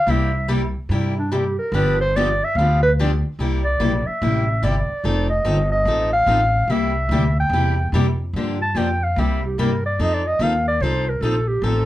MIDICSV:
0, 0, Header, 1, 5, 480
1, 0, Start_track
1, 0, Tempo, 412939
1, 98, Time_signature, 4, 2, 24, 8
1, 13778, End_track
2, 0, Start_track
2, 0, Title_t, "Clarinet"
2, 0, Program_c, 0, 71
2, 0, Note_on_c, 0, 77, 107
2, 118, Note_on_c, 0, 76, 91
2, 135, Note_off_c, 0, 77, 0
2, 587, Note_off_c, 0, 76, 0
2, 1375, Note_on_c, 0, 62, 77
2, 1541, Note_on_c, 0, 67, 79
2, 1559, Note_off_c, 0, 62, 0
2, 1838, Note_off_c, 0, 67, 0
2, 1845, Note_on_c, 0, 70, 86
2, 2038, Note_on_c, 0, 71, 85
2, 2055, Note_off_c, 0, 70, 0
2, 2328, Note_off_c, 0, 71, 0
2, 2335, Note_on_c, 0, 72, 108
2, 2515, Note_on_c, 0, 74, 92
2, 2533, Note_off_c, 0, 72, 0
2, 2834, Note_on_c, 0, 76, 100
2, 2851, Note_off_c, 0, 74, 0
2, 2983, Note_on_c, 0, 77, 97
2, 3000, Note_off_c, 0, 76, 0
2, 3280, Note_off_c, 0, 77, 0
2, 3287, Note_on_c, 0, 71, 103
2, 3389, Note_off_c, 0, 71, 0
2, 4241, Note_on_c, 0, 74, 90
2, 4726, Note_on_c, 0, 76, 89
2, 4744, Note_off_c, 0, 74, 0
2, 5392, Note_on_c, 0, 74, 81
2, 5410, Note_off_c, 0, 76, 0
2, 6146, Note_off_c, 0, 74, 0
2, 6153, Note_on_c, 0, 75, 90
2, 6644, Note_off_c, 0, 75, 0
2, 6651, Note_on_c, 0, 75, 91
2, 7094, Note_off_c, 0, 75, 0
2, 7126, Note_on_c, 0, 77, 113
2, 7794, Note_on_c, 0, 76, 88
2, 7811, Note_off_c, 0, 77, 0
2, 8574, Note_off_c, 0, 76, 0
2, 8600, Note_on_c, 0, 79, 96
2, 9190, Note_off_c, 0, 79, 0
2, 10019, Note_on_c, 0, 81, 93
2, 10195, Note_on_c, 0, 79, 80
2, 10213, Note_off_c, 0, 81, 0
2, 10504, Note_on_c, 0, 77, 84
2, 10522, Note_off_c, 0, 79, 0
2, 10686, Note_on_c, 0, 76, 79
2, 10703, Note_off_c, 0, 77, 0
2, 10979, Note_off_c, 0, 76, 0
2, 10992, Note_on_c, 0, 67, 69
2, 11150, Note_on_c, 0, 70, 84
2, 11167, Note_off_c, 0, 67, 0
2, 11451, Note_off_c, 0, 70, 0
2, 11460, Note_on_c, 0, 74, 77
2, 11642, Note_on_c, 0, 75, 94
2, 11660, Note_off_c, 0, 74, 0
2, 11783, Note_on_c, 0, 74, 76
2, 11800, Note_off_c, 0, 75, 0
2, 11935, Note_on_c, 0, 75, 86
2, 11953, Note_off_c, 0, 74, 0
2, 12119, Note_on_c, 0, 77, 94
2, 12136, Note_off_c, 0, 75, 0
2, 12405, Note_off_c, 0, 77, 0
2, 12412, Note_on_c, 0, 74, 90
2, 12577, Note_on_c, 0, 72, 85
2, 12595, Note_off_c, 0, 74, 0
2, 12894, Note_on_c, 0, 70, 92
2, 12911, Note_off_c, 0, 72, 0
2, 13044, Note_on_c, 0, 69, 77
2, 13062, Note_off_c, 0, 70, 0
2, 13349, Note_on_c, 0, 67, 79
2, 13366, Note_off_c, 0, 69, 0
2, 13529, Note_on_c, 0, 69, 82
2, 13547, Note_off_c, 0, 67, 0
2, 13778, Note_off_c, 0, 69, 0
2, 13778, End_track
3, 0, Start_track
3, 0, Title_t, "Steel-string acoustic guitar"
3, 0, Program_c, 1, 25
3, 88, Note_on_c, 1, 48, 75
3, 91, Note_on_c, 1, 58, 85
3, 92, Note_on_c, 1, 55, 85
3, 96, Note_on_c, 1, 67, 75
3, 98, Note_on_c, 1, 64, 66
3, 346, Note_off_c, 1, 48, 0
3, 347, Note_off_c, 1, 58, 0
3, 348, Note_off_c, 1, 55, 0
3, 350, Note_off_c, 1, 67, 0
3, 351, Note_off_c, 1, 64, 0
3, 562, Note_on_c, 1, 48, 80
3, 562, Note_on_c, 1, 55, 92
3, 567, Note_on_c, 1, 58, 86
3, 572, Note_on_c, 1, 64, 94
3, 574, Note_on_c, 1, 67, 94
3, 703, Note_off_c, 1, 55, 0
3, 704, Note_off_c, 1, 48, 0
3, 706, Note_off_c, 1, 58, 0
3, 708, Note_off_c, 1, 64, 0
3, 709, Note_off_c, 1, 67, 0
3, 1055, Note_on_c, 1, 48, 68
3, 1060, Note_on_c, 1, 55, 69
3, 1063, Note_on_c, 1, 58, 71
3, 1067, Note_on_c, 1, 64, 81
3, 1067, Note_on_c, 1, 67, 72
3, 1309, Note_off_c, 1, 48, 0
3, 1311, Note_off_c, 1, 55, 0
3, 1313, Note_off_c, 1, 58, 0
3, 1314, Note_off_c, 1, 64, 0
3, 1315, Note_off_c, 1, 67, 0
3, 1530, Note_on_c, 1, 48, 79
3, 1534, Note_on_c, 1, 55, 91
3, 1540, Note_on_c, 1, 67, 90
3, 1541, Note_on_c, 1, 58, 79
3, 1543, Note_on_c, 1, 64, 87
3, 1667, Note_off_c, 1, 48, 0
3, 1669, Note_off_c, 1, 55, 0
3, 1672, Note_off_c, 1, 58, 0
3, 1672, Note_off_c, 1, 67, 0
3, 1673, Note_off_c, 1, 64, 0
3, 2017, Note_on_c, 1, 50, 74
3, 2021, Note_on_c, 1, 53, 70
3, 2025, Note_on_c, 1, 59, 74
3, 2026, Note_on_c, 1, 67, 85
3, 2031, Note_on_c, 1, 62, 80
3, 2269, Note_off_c, 1, 50, 0
3, 2271, Note_off_c, 1, 53, 0
3, 2274, Note_off_c, 1, 59, 0
3, 2274, Note_off_c, 1, 67, 0
3, 2276, Note_off_c, 1, 62, 0
3, 2512, Note_on_c, 1, 50, 82
3, 2515, Note_on_c, 1, 59, 91
3, 2519, Note_on_c, 1, 53, 84
3, 2522, Note_on_c, 1, 62, 90
3, 2526, Note_on_c, 1, 67, 99
3, 2638, Note_off_c, 1, 50, 0
3, 2639, Note_off_c, 1, 59, 0
3, 2641, Note_off_c, 1, 53, 0
3, 2643, Note_off_c, 1, 62, 0
3, 2645, Note_off_c, 1, 67, 0
3, 3002, Note_on_c, 1, 50, 62
3, 3003, Note_on_c, 1, 59, 66
3, 3005, Note_on_c, 1, 53, 77
3, 3008, Note_on_c, 1, 62, 67
3, 3016, Note_on_c, 1, 67, 70
3, 3242, Note_off_c, 1, 50, 0
3, 3242, Note_off_c, 1, 59, 0
3, 3243, Note_off_c, 1, 53, 0
3, 3245, Note_off_c, 1, 62, 0
3, 3249, Note_off_c, 1, 67, 0
3, 3481, Note_on_c, 1, 50, 94
3, 3487, Note_on_c, 1, 53, 93
3, 3488, Note_on_c, 1, 59, 91
3, 3493, Note_on_c, 1, 67, 89
3, 3495, Note_on_c, 1, 62, 91
3, 3602, Note_off_c, 1, 50, 0
3, 3605, Note_off_c, 1, 53, 0
3, 3606, Note_off_c, 1, 59, 0
3, 3608, Note_off_c, 1, 67, 0
3, 3609, Note_off_c, 1, 62, 0
3, 3945, Note_on_c, 1, 48, 57
3, 3955, Note_on_c, 1, 55, 70
3, 3958, Note_on_c, 1, 64, 69
3, 3961, Note_on_c, 1, 67, 78
3, 3962, Note_on_c, 1, 58, 70
3, 4193, Note_off_c, 1, 48, 0
3, 4198, Note_off_c, 1, 55, 0
3, 4200, Note_off_c, 1, 64, 0
3, 4201, Note_off_c, 1, 67, 0
3, 4202, Note_off_c, 1, 58, 0
3, 4416, Note_on_c, 1, 48, 72
3, 4419, Note_on_c, 1, 55, 70
3, 4419, Note_on_c, 1, 58, 92
3, 4428, Note_on_c, 1, 67, 86
3, 4429, Note_on_c, 1, 64, 75
3, 4549, Note_off_c, 1, 48, 0
3, 4551, Note_off_c, 1, 55, 0
3, 4551, Note_off_c, 1, 58, 0
3, 4555, Note_off_c, 1, 67, 0
3, 4556, Note_off_c, 1, 64, 0
3, 4904, Note_on_c, 1, 48, 63
3, 4912, Note_on_c, 1, 58, 69
3, 4912, Note_on_c, 1, 64, 75
3, 4913, Note_on_c, 1, 67, 76
3, 4916, Note_on_c, 1, 55, 58
3, 5153, Note_off_c, 1, 48, 0
3, 5157, Note_off_c, 1, 58, 0
3, 5157, Note_off_c, 1, 64, 0
3, 5158, Note_off_c, 1, 67, 0
3, 5159, Note_off_c, 1, 55, 0
3, 5379, Note_on_c, 1, 58, 86
3, 5384, Note_on_c, 1, 48, 95
3, 5385, Note_on_c, 1, 55, 75
3, 5388, Note_on_c, 1, 67, 89
3, 5392, Note_on_c, 1, 64, 97
3, 5511, Note_off_c, 1, 58, 0
3, 5514, Note_off_c, 1, 48, 0
3, 5514, Note_off_c, 1, 55, 0
3, 5516, Note_off_c, 1, 67, 0
3, 5518, Note_off_c, 1, 64, 0
3, 5862, Note_on_c, 1, 53, 62
3, 5869, Note_on_c, 1, 63, 75
3, 5870, Note_on_c, 1, 60, 67
3, 5871, Note_on_c, 1, 69, 81
3, 6112, Note_off_c, 1, 53, 0
3, 6116, Note_off_c, 1, 60, 0
3, 6116, Note_off_c, 1, 63, 0
3, 6117, Note_off_c, 1, 69, 0
3, 6329, Note_on_c, 1, 53, 78
3, 6335, Note_on_c, 1, 60, 90
3, 6340, Note_on_c, 1, 69, 87
3, 6348, Note_on_c, 1, 63, 88
3, 6467, Note_off_c, 1, 53, 0
3, 6470, Note_off_c, 1, 60, 0
3, 6472, Note_off_c, 1, 69, 0
3, 6476, Note_off_c, 1, 63, 0
3, 6814, Note_on_c, 1, 53, 66
3, 6825, Note_on_c, 1, 60, 68
3, 6831, Note_on_c, 1, 63, 70
3, 6836, Note_on_c, 1, 69, 77
3, 7069, Note_off_c, 1, 53, 0
3, 7074, Note_off_c, 1, 60, 0
3, 7077, Note_off_c, 1, 63, 0
3, 7080, Note_off_c, 1, 69, 0
3, 7288, Note_on_c, 1, 53, 78
3, 7291, Note_on_c, 1, 60, 87
3, 7301, Note_on_c, 1, 63, 81
3, 7304, Note_on_c, 1, 69, 94
3, 7427, Note_off_c, 1, 53, 0
3, 7428, Note_off_c, 1, 60, 0
3, 7433, Note_off_c, 1, 63, 0
3, 7434, Note_off_c, 1, 69, 0
3, 7782, Note_on_c, 1, 58, 77
3, 7783, Note_on_c, 1, 48, 66
3, 7783, Note_on_c, 1, 55, 68
3, 7789, Note_on_c, 1, 67, 72
3, 7791, Note_on_c, 1, 64, 80
3, 8033, Note_off_c, 1, 48, 0
3, 8033, Note_off_c, 1, 55, 0
3, 8033, Note_off_c, 1, 58, 0
3, 8036, Note_off_c, 1, 67, 0
3, 8038, Note_off_c, 1, 64, 0
3, 8264, Note_on_c, 1, 48, 89
3, 8271, Note_on_c, 1, 64, 84
3, 8272, Note_on_c, 1, 55, 91
3, 8272, Note_on_c, 1, 58, 78
3, 8279, Note_on_c, 1, 67, 86
3, 8395, Note_off_c, 1, 48, 0
3, 8398, Note_off_c, 1, 64, 0
3, 8399, Note_off_c, 1, 55, 0
3, 8399, Note_off_c, 1, 58, 0
3, 8402, Note_off_c, 1, 67, 0
3, 8755, Note_on_c, 1, 55, 65
3, 8756, Note_on_c, 1, 48, 69
3, 8760, Note_on_c, 1, 58, 70
3, 8760, Note_on_c, 1, 64, 69
3, 8764, Note_on_c, 1, 67, 79
3, 9000, Note_off_c, 1, 48, 0
3, 9000, Note_off_c, 1, 55, 0
3, 9002, Note_off_c, 1, 58, 0
3, 9002, Note_off_c, 1, 64, 0
3, 9004, Note_off_c, 1, 67, 0
3, 9226, Note_on_c, 1, 48, 95
3, 9226, Note_on_c, 1, 55, 98
3, 9233, Note_on_c, 1, 64, 92
3, 9237, Note_on_c, 1, 58, 83
3, 9244, Note_on_c, 1, 67, 96
3, 9356, Note_off_c, 1, 48, 0
3, 9356, Note_off_c, 1, 55, 0
3, 9359, Note_off_c, 1, 64, 0
3, 9361, Note_off_c, 1, 58, 0
3, 9365, Note_off_c, 1, 67, 0
3, 9719, Note_on_c, 1, 53, 72
3, 9721, Note_on_c, 1, 50, 69
3, 9723, Note_on_c, 1, 58, 71
3, 9727, Note_on_c, 1, 62, 73
3, 9728, Note_on_c, 1, 67, 79
3, 9961, Note_off_c, 1, 53, 0
3, 9962, Note_off_c, 1, 50, 0
3, 9964, Note_off_c, 1, 58, 0
3, 9966, Note_off_c, 1, 62, 0
3, 9966, Note_off_c, 1, 67, 0
3, 10178, Note_on_c, 1, 50, 82
3, 10187, Note_on_c, 1, 58, 81
3, 10188, Note_on_c, 1, 53, 84
3, 10188, Note_on_c, 1, 62, 98
3, 10195, Note_on_c, 1, 67, 87
3, 10312, Note_off_c, 1, 50, 0
3, 10316, Note_off_c, 1, 53, 0
3, 10316, Note_off_c, 1, 58, 0
3, 10317, Note_off_c, 1, 62, 0
3, 10320, Note_off_c, 1, 67, 0
3, 10668, Note_on_c, 1, 48, 58
3, 10673, Note_on_c, 1, 55, 69
3, 10677, Note_on_c, 1, 58, 68
3, 10677, Note_on_c, 1, 64, 67
3, 10678, Note_on_c, 1, 67, 69
3, 10916, Note_off_c, 1, 48, 0
3, 10918, Note_off_c, 1, 55, 0
3, 10920, Note_off_c, 1, 58, 0
3, 10920, Note_off_c, 1, 64, 0
3, 10920, Note_off_c, 1, 67, 0
3, 11145, Note_on_c, 1, 48, 73
3, 11149, Note_on_c, 1, 55, 95
3, 11153, Note_on_c, 1, 64, 82
3, 11155, Note_on_c, 1, 58, 87
3, 11155, Note_on_c, 1, 67, 82
3, 11275, Note_off_c, 1, 48, 0
3, 11277, Note_off_c, 1, 55, 0
3, 11279, Note_off_c, 1, 64, 0
3, 11280, Note_off_c, 1, 58, 0
3, 11280, Note_off_c, 1, 67, 0
3, 11620, Note_on_c, 1, 53, 64
3, 11620, Note_on_c, 1, 60, 70
3, 11623, Note_on_c, 1, 63, 73
3, 11631, Note_on_c, 1, 69, 74
3, 11871, Note_off_c, 1, 53, 0
3, 11871, Note_off_c, 1, 60, 0
3, 11873, Note_off_c, 1, 63, 0
3, 11877, Note_off_c, 1, 69, 0
3, 12084, Note_on_c, 1, 53, 85
3, 12094, Note_on_c, 1, 60, 74
3, 12099, Note_on_c, 1, 63, 86
3, 12103, Note_on_c, 1, 69, 99
3, 12224, Note_off_c, 1, 53, 0
3, 12229, Note_off_c, 1, 60, 0
3, 12231, Note_off_c, 1, 63, 0
3, 12233, Note_off_c, 1, 69, 0
3, 12582, Note_on_c, 1, 53, 69
3, 12591, Note_on_c, 1, 60, 68
3, 12595, Note_on_c, 1, 69, 75
3, 12598, Note_on_c, 1, 63, 78
3, 12831, Note_off_c, 1, 53, 0
3, 12836, Note_off_c, 1, 60, 0
3, 12838, Note_off_c, 1, 69, 0
3, 12839, Note_off_c, 1, 63, 0
3, 13048, Note_on_c, 1, 60, 82
3, 13049, Note_on_c, 1, 53, 79
3, 13057, Note_on_c, 1, 63, 94
3, 13060, Note_on_c, 1, 69, 90
3, 13185, Note_off_c, 1, 60, 0
3, 13186, Note_off_c, 1, 53, 0
3, 13190, Note_off_c, 1, 63, 0
3, 13191, Note_off_c, 1, 69, 0
3, 13526, Note_on_c, 1, 60, 74
3, 13527, Note_on_c, 1, 53, 73
3, 13530, Note_on_c, 1, 63, 72
3, 13532, Note_on_c, 1, 69, 72
3, 13778, Note_off_c, 1, 53, 0
3, 13778, Note_off_c, 1, 60, 0
3, 13778, Note_off_c, 1, 63, 0
3, 13778, Note_off_c, 1, 69, 0
3, 13778, End_track
4, 0, Start_track
4, 0, Title_t, "Upright bass"
4, 0, Program_c, 2, 32
4, 76, Note_on_c, 2, 36, 95
4, 852, Note_off_c, 2, 36, 0
4, 1036, Note_on_c, 2, 43, 88
4, 1811, Note_off_c, 2, 43, 0
4, 1996, Note_on_c, 2, 31, 100
4, 2772, Note_off_c, 2, 31, 0
4, 2963, Note_on_c, 2, 38, 94
4, 3736, Note_off_c, 2, 38, 0
4, 3939, Note_on_c, 2, 36, 83
4, 4403, Note_off_c, 2, 36, 0
4, 4415, Note_on_c, 2, 34, 88
4, 4702, Note_off_c, 2, 34, 0
4, 4900, Note_on_c, 2, 33, 96
4, 5364, Note_off_c, 2, 33, 0
4, 5375, Note_on_c, 2, 31, 90
4, 5662, Note_off_c, 2, 31, 0
4, 5856, Note_on_c, 2, 29, 85
4, 6322, Note_off_c, 2, 29, 0
4, 6331, Note_on_c, 2, 31, 93
4, 6794, Note_off_c, 2, 31, 0
4, 6801, Note_on_c, 2, 33, 90
4, 7274, Note_off_c, 2, 33, 0
4, 7279, Note_on_c, 2, 33, 97
4, 7751, Note_off_c, 2, 33, 0
4, 7758, Note_on_c, 2, 36, 84
4, 8233, Note_off_c, 2, 36, 0
4, 8239, Note_on_c, 2, 38, 98
4, 8705, Note_off_c, 2, 38, 0
4, 8712, Note_on_c, 2, 40, 95
4, 9190, Note_off_c, 2, 40, 0
4, 9208, Note_on_c, 2, 41, 85
4, 9678, Note_off_c, 2, 41, 0
4, 9687, Note_on_c, 2, 43, 85
4, 10158, Note_off_c, 2, 43, 0
4, 10167, Note_on_c, 2, 41, 87
4, 10637, Note_off_c, 2, 41, 0
4, 10651, Note_on_c, 2, 36, 96
4, 11119, Note_off_c, 2, 36, 0
4, 11138, Note_on_c, 2, 43, 85
4, 11602, Note_off_c, 2, 43, 0
4, 11614, Note_on_c, 2, 41, 79
4, 12071, Note_off_c, 2, 41, 0
4, 12078, Note_on_c, 2, 39, 96
4, 12552, Note_off_c, 2, 39, 0
4, 12558, Note_on_c, 2, 36, 91
4, 13022, Note_off_c, 2, 36, 0
4, 13029, Note_on_c, 2, 34, 87
4, 13499, Note_off_c, 2, 34, 0
4, 13506, Note_on_c, 2, 33, 91
4, 13778, Note_off_c, 2, 33, 0
4, 13778, End_track
5, 0, Start_track
5, 0, Title_t, "Muted upright bass strokes"
5, 4738, Note_on_c, 9, 29, 38
5, 4854, Note_off_c, 9, 29, 0
5, 5678, Note_on_c, 9, 29, 41
5, 5794, Note_off_c, 9, 29, 0
5, 13778, End_track
0, 0, End_of_file